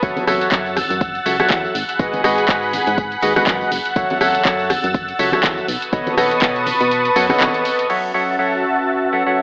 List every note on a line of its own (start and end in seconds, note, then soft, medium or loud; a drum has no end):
0.03 0.12 F#1 loud
0.03 0.25 F#3 medium
0.03 0.25 F#4 medium
0.03 0.25 A4 medium
0.03 0.25 C#5 medium
0.03 0.25 E5 medium
0.03 0.25 F#5 medium
0.03 5.64 F#5 medium
0.03 1.73 E6 medium
0.03 1.73 A6 medium
0.03 kick loud
0.03 closed hi-hat medium
0.03 tambourine soft
0.17 closed hi-hat soft
0.17 tambourine soft
0.17 high conga medium
0.27 0.44 F#1 medium
0.27 0.49 F#3 medium
0.27 0.49 F#4 medium
0.27 0.49 A4 medium
0.27 0.49 C#5 medium
0.27 0.49 E5 medium
0.27 0.49 F#5 medium
0.27 cross-stick medium
0.27 open hi-hat loud
0.27 tambourine medium
0.41 closed hi-hat medium
0.41 tambourine soft
0.52 0.83 F#2 medium
0.52 0.77 F#3 medium
0.52 0.77 F#4 medium
0.52 0.78 A4 medium
0.52 0.77 C#5 medium
0.52 0.77 E5 medium
0.52 0.78 F#5 medium
0.52 kick loud
0.52 clap loud
0.52 closed hi-hat medium
0.52 tambourine soft
0.66 tambourine soft
0.77 cross-stick medium
0.77 open hi-hat loud
0.77 tambourine medium
0.77 high conga medium
0.90 1.20 F#2 medium
0.90 closed hi-hat soft
0.90 tambourine soft
1.01 kick loud
1.01 closed hi-hat medium
1.01 tambourine soft
1.15 closed hi-hat soft
1.15 tambourine soft
1.26 1.43 C#2 medium
1.26 1.36 F#3 medium
1.26 1.36 F#4 medium
1.26 1.36 A4 medium
1.26 1.36 C#5 medium
1.26 1.36 E5 medium
1.26 1.36 F#5 medium
1.26 open hi-hat loud
1.26 tambourine medium
1.40 1.74 F#3 medium
1.40 1.74 F#4 medium
1.40 1.74 A4 medium
1.40 1.74 C#5 medium
1.40 1.74 E5 medium
1.40 1.74 F#5 loud
1.40 cross-stick medium
1.40 closed hi-hat medium
1.40 tambourine soft
1.40 tambourine medium
1.40 high conga medium
1.50 1.67 E2 loud
1.50 kick loud
1.50 clap loud
1.50 closed hi-hat medium
1.50 tambourine soft
1.64 tambourine soft
1.75 1.84 G#1 loud
1.75 3.70 G#4 medium
1.75 3.70 B5 medium
1.75 open hi-hat loud
1.75 tambourine medium
1.89 closed hi-hat soft
1.89 tambourine soft
1.99 2.08 G#1 loud
1.99 2.22 G#3 medium
1.99 2.22 F#4 medium
1.99 2.22 G#4 medium
1.99 2.22 B4 medium
1.99 2.22 D#5 medium
1.99 2.22 F#5 medium
1.99 kick loud
1.99 closed hi-hat medium
1.99 tambourine soft
2.13 closed hi-hat soft
2.13 tambourine soft
2.13 high conga medium
2.24 2.41 G#1 medium
2.24 2.46 G#3 medium
2.24 2.46 F#4 medium
2.24 2.46 G#4 medium
2.24 2.46 B4 medium
2.24 2.46 D#5 medium
2.24 2.46 F#5 loud
2.24 cross-stick medium
2.24 open hi-hat loud
2.24 tambourine medium
2.38 closed hi-hat medium
2.38 tambourine soft
2.49 2.79 G#2 medium
2.49 2.74 G#3 medium
2.49 2.74 F#4 medium
2.49 2.74 G#4 medium
2.49 2.74 B4 medium
2.49 2.74 D#5 medium
2.49 2.74 F#5 medium
2.49 kick loud
2.49 clap loud
2.49 closed hi-hat medium
2.49 tambourine soft
2.63 tambourine soft
2.73 open hi-hat loud
2.73 tambourine medium
2.73 high conga medium
2.86 3.16 G#2 medium
2.86 closed hi-hat medium
2.86 tambourine soft
2.98 kick loud
2.98 closed hi-hat medium
2.98 tambourine soft
3.12 closed hi-hat soft
3.12 tambourine soft
3.21 3.39 D#2 medium
3.21 3.33 G#3 medium
3.21 3.33 F#4 medium
3.21 3.33 G#4 medium
3.21 3.33 B4 medium
3.21 3.33 D#5 medium
3.21 3.33 F#5 medium
3.21 open hi-hat loud
3.21 tambourine medium
3.36 3.70 G#3 medium
3.36 3.70 F#4 medium
3.36 3.70 G#4 medium
3.36 3.70 B4 medium
3.36 3.70 D#5 medium
3.36 3.70 F#5 medium
3.36 cross-stick medium
3.36 closed hi-hat medium
3.36 tambourine medium
3.36 tambourine soft
3.36 high conga medium
3.47 3.64 F#2 loud
3.47 kick loud
3.47 clap loud
3.47 closed hi-hat medium
3.47 tambourine soft
3.61 tambourine soft
3.72 3.81 F#1 loud
3.72 5.66 E6 medium
3.72 5.66 A6 medium
3.72 open hi-hat loud
3.72 tambourine medium
3.86 closed hi-hat medium
3.86 tambourine soft
3.96 4.05 F#1 loud
3.96 4.18 F#3 medium
3.96 4.18 F#4 medium
3.96 4.18 A4 medium
3.96 4.18 C#5 medium
3.96 4.18 E5 medium
3.96 4.18 F#5 medium
3.96 kick loud
3.96 closed hi-hat medium
3.96 tambourine soft
4.10 closed hi-hat soft
4.10 tambourine soft
4.10 high conga loud
4.21 4.38 F#1 medium
4.21 4.43 F#3 medium
4.21 4.43 F#4 medium
4.21 4.43 A4 medium
4.21 4.43 C#5 medium
4.21 4.43 E5 medium
4.21 4.43 F#5 loud
4.21 cross-stick medium
4.21 open hi-hat loud
4.21 tambourine medium
4.34 closed hi-hat medium
4.34 tambourine soft
4.45 4.76 F#2 medium
4.45 4.71 F#3 medium
4.45 4.71 F#4 medium
4.45 4.71 A4 medium
4.45 4.71 C#5 medium
4.45 4.71 E5 medium
4.45 4.71 F#5 medium
4.45 kick loud
4.45 clap loud
4.45 closed hi-hat medium
4.45 tambourine soft
4.59 tambourine soft
4.70 cross-stick medium
4.70 open hi-hat loud
4.70 tambourine medium
4.70 high conga medium
4.84 5.13 F#2 medium
4.84 closed hi-hat medium
4.84 tambourine soft
4.94 kick loud
4.94 closed hi-hat medium
4.94 tambourine soft
5.08 closed hi-hat soft
5.08 tambourine soft
5.19 5.36 C#2 medium
5.19 5.30 F#3 medium
5.19 5.30 F#4 medium
5.19 5.30 A4 medium
5.19 5.30 C#5 medium
5.19 5.30 E5 medium
5.19 5.30 F#5 medium
5.19 open hi-hat loud
5.19 tambourine medium
5.32 5.67 F#3 medium
5.32 5.67 F#4 medium
5.32 5.67 A4 medium
5.32 5.67 C#5 medium
5.32 5.67 E5 medium
5.32 5.67 F#5 medium
5.32 cross-stick medium
5.32 closed hi-hat medium
5.32 tambourine medium
5.32 tambourine soft
5.32 high conga loud
5.44 5.61 E2 loud
5.44 kick loud
5.44 clap loud
5.44 closed hi-hat medium
5.44 tambourine soft
5.58 tambourine soft
5.68 5.77 B1 loud
5.68 7.87 B4 medium
5.68 7.87 A5 medium
5.68 7.87 C#6 medium
5.68 7.87 D#6 medium
5.68 open hi-hat loud
5.68 tambourine medium
5.82 closed hi-hat medium
5.82 tambourine soft
5.93 6.02 B1 loud
5.93 6.15 B3 medium
5.93 6.15 A4 medium
5.93 6.15 B4 medium
5.93 6.15 C#5 medium
5.93 6.15 D#5 medium
5.93 6.15 F#5 medium
5.93 kick loud
5.93 closed hi-hat medium
5.93 tambourine soft
6.07 closed hi-hat soft
6.07 tambourine soft
6.07 high conga medium
6.17 6.35 B1 medium
6.17 6.40 B3 medium
6.17 6.40 A4 medium
6.17 6.40 B4 medium
6.17 6.40 C#5 medium
6.17 6.40 D#5 medium
6.17 6.40 F#5 loud
6.17 cross-stick medium
6.17 open hi-hat loud
6.17 tambourine medium
6.31 closed hi-hat medium
6.31 tambourine soft
6.42 6.73 B2 medium
6.42 6.68 B3 medium
6.42 6.68 A4 medium
6.42 6.68 B4 medium
6.42 6.68 C#5 medium
6.42 6.68 D#5 medium
6.42 6.68 F#5 medium
6.42 kick loud
6.42 clap loud
6.42 closed hi-hat medium
6.42 tambourine soft
6.56 closed hi-hat soft
6.56 tambourine soft
6.66 open hi-hat loud
6.66 tambourine medium
6.66 high conga medium
6.80 7.10 B2 medium
6.80 closed hi-hat medium
6.80 tambourine soft
6.91 closed hi-hat medium
6.91 tambourine soft
7.05 closed hi-hat soft
7.05 tambourine soft
7.16 7.33 F#2 medium
7.16 7.26 B3 medium
7.16 7.26 A4 medium
7.16 7.26 B4 medium
7.16 7.26 C#5 medium
7.16 7.26 D#5 medium
7.16 7.26 F#5 medium
7.16 open hi-hat loud
7.16 tambourine medium
7.29 7.87 B3 medium
7.29 7.87 A4 medium
7.29 7.87 B4 medium
7.29 7.87 C#5 medium
7.29 7.87 D#5 medium
7.29 7.87 F#5 medium
7.29 cross-stick medium
7.29 open hi-hat medium
7.29 tambourine soft
7.29 tambourine medium
7.29 high conga loud
7.39 7.49 B1 medium
7.39 clap loud
7.39 closed hi-hat medium
7.39 tambourine soft
7.54 closed hi-hat soft
7.54 tambourine soft
7.65 open hi-hat loud
7.65 tambourine medium
7.79 closed hi-hat medium
7.79 tambourine medium
7.79 tambourine soft
7.90 8.12 F#3 medium
7.90 9.42 C#4 medium
7.90 9.42 F#4 medium
7.90 8.12 F#4 medium
7.90 8.12 A4 medium
7.90 8.12 C#5 medium
7.90 9.42 E5 medium
7.90 8.12 E5 medium
7.90 8.12 F#5 medium
7.90 9.42 A5 medium
7.90 crash medium
7.94 9.42 F#4 medium
8.14 8.36 F#3 medium
8.14 8.36 F#4 medium
8.14 8.36 A4 medium
8.14 8.36 C#5 medium
8.14 8.36 E5 medium
8.14 8.36 F#5 medium
8.39 8.64 F#3 medium
8.39 8.64 F#4 medium
8.39 8.64 A4 medium
8.39 8.64 C#5 medium
8.39 8.64 E5 medium
8.39 8.64 F#5 medium
8.57 9.42 B4 medium
8.68 9.42 E5 medium
9.13 9.23 F#3 medium
9.13 9.23 F#4 medium
9.13 9.23 A4 medium
9.13 9.23 C#5 medium
9.13 9.23 E5 medium
9.13 9.23 F#5 medium
9.26 9.42 F#3 medium
9.26 9.42 F#4 medium
9.26 9.42 A4 medium
9.26 9.42 C#5 medium
9.26 9.42 E5 medium
9.26 9.42 F#5 medium